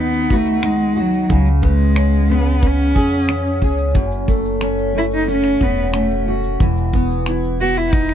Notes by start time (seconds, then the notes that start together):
Already playing: D#2 D#3 B3 F#4
0.00 B3 D#4
0.13 shaker
0.30 C#2 A3 F#4, kick
0.46 shaker
0.63 G#3 D#4, finger snap, shaker
0.80 shaker
0.96 F#4, shaker
1.00 F#3
1.13 shaker
1.29 C#2 C#3 F#3, kick, shaker
1.46 shaker
1.62 G#3 B3, kick
1.80 shaker
1.95 C#4, finger snap, shaker
2.13 shaker
2.29 B3, shaker
2.46 shaker
2.62 C#4, kick, shaker
2.66 C#4
2.79 shaker
2.95 F2 G#4, kick
3.12 shaker
3.29 C#4, finger snap, shaker
3.46 shaker
3.62 C#2 G#4, kick, shaker
3.78 shaker
3.94 F#1 F#2, kick, shaker
4.11 shaker
4.28 A3, kick, shaker
4.45 shaker
4.61 C#4, finger snap, shaker
4.78 shaker
4.95 A3 E4
5.11 D#4, shaker
5.28 C#4, shaker
5.44 finger snap, shaker
5.60 E1 B3 F#4, kick
5.77 shaker
5.93 A3 C#4, finger snap, shaker
6.10 shaker
6.28 F#4
6.43 shaker
6.60 E1 E3, kick, shaker
6.77 shaker
6.93 B3, kick, shaker
7.11 shaker
7.26 E4, finger snap, shaker
7.44 shaker
7.60 B3 F#4, shaker
7.76 E4, shaker
7.93 D#4, kick, shaker
8.09 finger snap, shaker